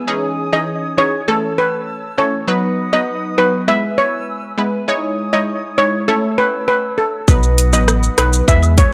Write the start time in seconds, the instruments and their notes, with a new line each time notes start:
Already playing: flute section G#5
0.07 synth pluck E3 C#4 D#4 G#4, flute section C#5 D#6
0.53 synth pluck E3 C#4 D#4 G#4, steel pan D#5
0.98 synth pluck E3 C#4 D#4 G#4, steel pan C#5
1.28 synth pluck E3 A3 C#4 A4, steel pan A4, flute section A5 E6
1.58 steel pan B4
2.18 synth pluck E3 A3 C#4 A4, steel pan C#5
2.48 synth pluck F#3 B3 D#4 B4, flute section B4 D#5 F#5 D#6
2.93 synth pluck F#3 B3 D#4 B4, steel pan D#5
3.38 synth pluck F#3 B3 D#4 B4, steel pan B4
3.68 synth pluck G#3 B3 E4 B4, flute section B4 G#5 E6, steel pan E5
3.98 steel pan C#5
4.58 synth pluck G#3 B3 E4 B4
4.88 synth pluck G#3 D#4 E4 C#5, flute section C#5 D#6
5.33 synth pluck G#3 D#4 E4 C#5, steel pan D#5
5.78 synth pluck G#3 D#4 E4 C#5, steel pan C#5
6.08 synth pluck A3 C#4 E4 C#5, steel pan A4, flute section A5 E6
6.38 steel pan B4
6.68 steel pan B4
6.98 steel pan A4
7.28 sub bass B1, synth pluck F#3 B3 D#4 B4, flute section B4 D#5 F#5 D#6, kick, high woodblock, shaker
7.43 shaker
7.58 closed hi-hat, cabasa, shaker
7.73 sub bass A1, synth pluck F#3 B3 D#4 B4, steel pan D#5, shaker
7.88 cross-stick, high woodblock, shaker
8.03 shaker
8.18 sub bass B1, synth pluck F#3 B3 D#4 B4, steel pan B4, cross-stick, closed hi-hat, cabasa, high woodblock, shaker
8.33 shaker
8.48 sub bass E2, synth pluck G#3 B3 E4 B4, steel pan E5, flute section G#5 E6, kick, shaker
8.63 high woodblock, shaker
8.77 steel pan C#5, kick, closed hi-hat, cabasa, shaker